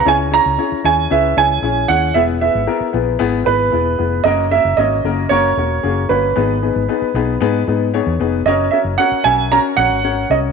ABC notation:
X:1
M:4/4
L:1/16
Q:1/4=114
K:F#mix
V:1 name="Grand piano"
g2 a4 g2 e2 g4 f2 | e2 e4 z4 B6 | d2 e2 d4 c6 B2- | B12- B2 z2 |
d2 e2 f2 g2 a2 f4 d2 |]
V:2 name="Upright piano"
[CEGc]2 [CEGc]2 [CEGc]2 [CEGc]2 [CEGB]2 [CEGc]2 [CEGc]2 [CEGc]2 | [B,EGB]2 [B,EGB]2 [B,EGA]2 [B,EGB]2 [B,EGB]2 [B,EGB]2 [B,EGB]2 [B,EGB]2 | [A,CFA]2 [A,CFA]2 [A,CFc]2 [A,CFA]2 [A,CFA]2 [A,CFA]2 [A,CFG]2 [A,CFc]2 | [B,DGB]2 [B,DGB]2 [B,DGB]2 [B,DGB]2 [B,DGB]2 [B,DGB]2 [B,DGc]2 [B,DGB]2 |
[CFAc]2 [CFAc]2 [CFAc]2 [CFAe]2 [CFAc]2 [CFAc]2 [CFAc]2 [CFAc]2 |]
V:3 name="Fingered electric bass" clef=bass
C,,3 C,, z2 D,,2 C,,2 C,,2 A,,,2 D,,2 | E,,,3 G,,, z2 A,,,2 G,,,2 G,,,2 E,,,2 ^E,,,2 | F,,,3 F,,, G,,,2 F,,,2 F,,,2 E,,,2 F,,,2 =G,,,2 | G,,,3 G,,, z2 B,,,2 G,,2 G,,3 E,, ^E,,,2 |
F,,,2 z F,,, z2 B,,,3 z A,,, G,,,3 ^B,,,2 |]